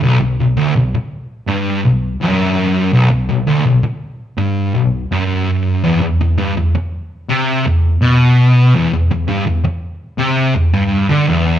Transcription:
X:1
M:4/4
L:1/16
Q:1/4=83
K:Bm
V:1 name="Distorted electric guitar" clef=bass
B,,, B,,, B,,, D,, B,,, z3 G,,2 B,,,2 F,,4 | B,,, B,,, B,,, D,, B,,, z3 G,,2 B,,,2 F,,4 | E,, E,, E,, G,, E,, z3 =C,2 E,,2 B,,4 | E,, E,, E,, G,, E,, z3 =C,2 E,, G,,2 D, E,,2 |]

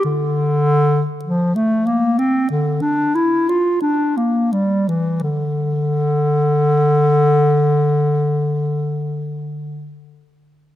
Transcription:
X:1
M:4/4
L:1/16
Q:1/4=44
K:Dm
V:1 name="Clarinet"
D,4 F, A, B, C D, D E F D B, G, E, | D,16 |]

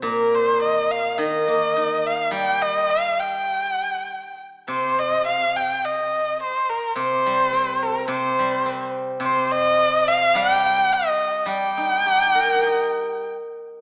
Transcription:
X:1
M:4/4
L:1/8
Q:1/4=105
K:none
V:1 name="Erhu"
_B c _e f e3 f | g _e f g4 z | c _e f g e2 c _B | c3 _B c3 z |
c _e2 f g2 e2 | g6 z2 |]
V:2 name="Guzheng" clef=bass
_B,,4 _E, _B, _E2 | G,6 z2 | C,6 z2 | C, G, C2 C, G, C2 |
C,4 G,4 | G, _E G _B _e4 |]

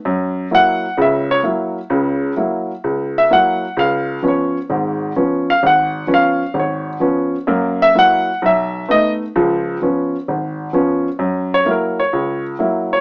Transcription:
X:1
M:4/4
L:1/8
Q:"Swing" 1/4=129
K:C#dor
V:1 name="Grand piano"
z2 f2 e c z2 | z4 z e f2 | ^e2 c z4 e | f2 ^e2 c z3 |
z e f2 e2 d z | z8 | z c A c2 z2 c |]
V:2 name="Grand piano" clef=bass
F,,2 [F,A,E] z [C,,C,]2 [F,A,E] z | [C,,C,]2 [F,A,E] z C,,2 [F,A,E] z | C,,2 [^E,B,C] z [G,,,G,,]2 [E,B,C] z | G,,,2 [^E,B,C] z G,,,2 [E,B,C] z |
[F,,A,]2 [F,A,E] z B,,,2 [=A,B,D] z | [C,,^E,]2 [E,B,C] z G,,,2 [E,B,C] z | F,,2 [F,A,E] z C,,2 [F,A,E] z |]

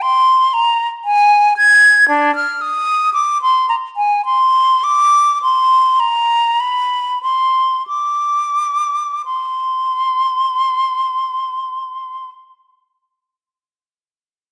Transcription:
X:1
M:4/4
L:1/16
Q:1/4=50
K:Cm
V:1 name="Flute"
c'2 b z a2 a'2 D f' e'2 d' c' b a | c'2 d'2 c'2 b2 =b2 c'2 d'4 | c'16 |]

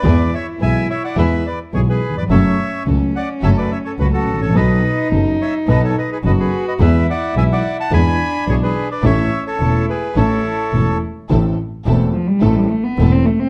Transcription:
X:1
M:4/4
L:1/16
Q:1/4=107
K:A
V:1 name="Bandoneon"
[Bd]2 [ce]2 [eg]2 [ce] [df] [Be]2 [Bd]2 [Gc] [GB]2 [Bd] | [ce]4 z2 [df]2 [ce] [Bd] [ce] [Ac] [FB] [FA]2 [Ac] | [B^d]4 z2 [ce]2 [Bd] [Ac] [Bd] [GB] [Bd] [GB]2 [Bd] | [Be]2 [df]2 [eg] [df]2 [fa] [gb]4 [Gc] [GB]2 [Bd] |
[ce]3 [Ac]3 [GB]2 [Ac]6 z2 | [K:Am] z16 |]
V:2 name="String section"
[B,EG]2 z2 [B,EG]2 z2 [B,EG]2 z2 [B,EG]2 z2 | [CFA]2 z2 [CFA]2 z2 [CFA]2 z2 [CFA]2 z2 | [B,^DA]2 z2 [B,DA]2 z2 [B,DA]2 z2 [B,DA]2 z2 | [B,EG]2 z2 [B,EG]2 z2 [B,EG]2 z2 [B,EG]2 z2 |
[CEA]2 z2 [CEA]2 z2 [CEA]2 z2 [CEA]2 z2 | [K:Am] [CEA]2 z2 [CEA]2 z2 [CEA]2 z2 [CEA]2 z2 |]
V:3 name="Cello"
E12- E2 z2 | C16 | ^D12 F4 | E8 D8 |
C4 E4 E6 z2 | [K:Am] z6 F, G, A, G, A, B,2 C A, C |]
V:4 name="Grand piano" clef=bass
[E,,E,G,B,G]2 z2 [B,,,B,,E,G,B,G]2 z2 [E,,E,G,B,G]2 z2 [B,,,B,,E,G,B,G]2 z/2 ^D,,/2 E,,/2 =F,,/2 | [F,,F,A,CA]2 z2 [C,,C,F,A,CA]2 z2 [F,,F,A,CA]2 z2 [C,,C,F,A,CA]2 z/2 G,,,/2 A,,,/2 _B,,,/2 | [B,,,B,,F,B,^DA]2 z2 [F,,,F,,F,B,DA]2 z2 [B,,,B,,F,B,DA]2 z2 [F,,,F,,F,B,DA]2 z2 | [E,,E,G,B,G]2 z2 [B,,,B,,E,G,B,G]2 z2 [E,,E,G,B,G]2 z2 [B,,,B,,E,G,B,G]2 z2 |
[A,,,A,,E,A,CA]2 z2 [E,,,E,,E,A,CA]2 z2 [A,,,A,,E,A,CA]2 z2 [E,,,E,,E,A,CA]2 z2 | [K:Am] [A,,,A,,E,A,CA]2 z2 [E,,,E,,E,A,CA]2 z2 [A,,,A,,E,A,CA]2 z2 [E,,,E,,E,A,CA]2 z2 |]
V:5 name="Double bass" clef=bass
E,,2 z2 B,,,2 z2 E,,2 z2 B,,,2 z2 | F,,,2 z2 C,,2 z2 F,,,2 z2 C,,2 A,,,2 | B,,,2 z2 F,,,2 z2 B,,,2 z2 F,,,2 z2 | E,,2 z2 B,,,2 z2 E,,2 z2 B,,,2 z2 |
A,,,2 z2 E,,,2 z2 A,,,2 z2 E,,,2 z2 | [K:Am] A,,,2 z2 E,,,2 z2 A,,,2 z2 E,,,2 z2 |]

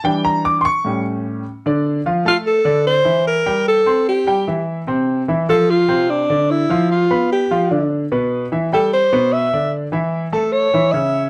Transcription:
X:1
M:4/4
L:1/8
Q:1/4=149
K:Dm
V:1 name="Alto saxophone"
z8 | z3 F A2 c2 | B2 A2 G3 z | z3 A F2 D2 |
E2 F2 G3 z | z3 A c2 e2 | z3 A ^c2 e2 |]
V:2 name="Grand piano"
g b d' [c'^c']2 z3 | [D,Dd]2 [F,Ff] [A,Aa]2 [D,Dd]2 [E,Ee]- | [E,Ee] [G,Gg]2 [Ccc']2 [G,Gg] [E,Ee]2 | [C,Cc]2 [E,Ee] [F,Ff]2 [C,Cc]2 [D,Dd]- |
[D,Dd] [F,Ff]2 [=B,=B=b]2 [F,Ff] [D,Dd]2 | [=B,,=B,=B]2 [E,Ee] [G,Gg]2 [B,,B,B]2 [D,Dd]- | [D,Dd] [E,Ee]2 [A,Aa]2 [E,Ee] [^C,^C^c]2 |]
V:3 name="Grand piano" clef=bass
[E,G,D]3 z [A,,G,^C]3 z | z8 | z8 | z8 |
z8 | z8 | z8 |]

